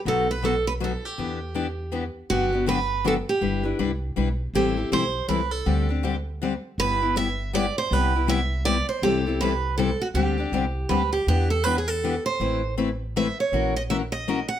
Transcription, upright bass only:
X:1
M:3/4
L:1/8
Q:"Swing" 1/4=160
K:Em
V:1 name="Upright bass" clef=bass
B,,,6 | E,,6 | [K:G] G,,,6 | G,,,2 C,,2 B,,,2 |
A,,,2 B,,,2 C,,2 | D,,6 | G,,,6 | C,,6 |
C,,6 | D,,2 C,,2 D,,2 | [K:Ador] E,,6 | A,,,6 |
^A,,,6 |]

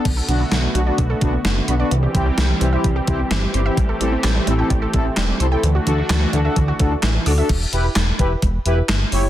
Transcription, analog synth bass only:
X:1
M:4/4
L:1/8
Q:1/4=129
K:Bphr
V:1 name="Analog synth bass" clef=bass
B,,, B,,, B,,, B,,, B,,, B,,, F,,, B,,, | C,, C,, C,, C,, C,, C,, G,,, G,,, | A,,, A,,, A,,, A,,, A,,, A,,, E,,, C,, | D,, D,, D,, D,, D,, D,, A,,, D,, |
[K:Edor] E,,, E,,, E,,, E,,, E,,, E,,, G,,, F,,, |]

